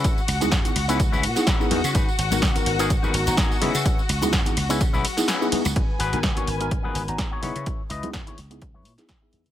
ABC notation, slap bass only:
X:1
M:4/4
L:1/16
Q:"Swing 16ths" 1/4=126
K:C#dor
V:1 name="Slap bass" clef=bass
z2 C,, C,, z2 C,,4 A,, z3 E,, C, | G,,, z G,,, G,,, C,, z G,,,3 z G,,, G,,, z2 C, C, | z2 C,, C,, F,, z C,,2 C, B,,, z4 z C,, | z2 G,,, G,,, C,, z G,,,3 z G,,, G,,, z2 C, C, |
z2 C,, C,, F,, z C,,4 A,, z3 E,, C, |]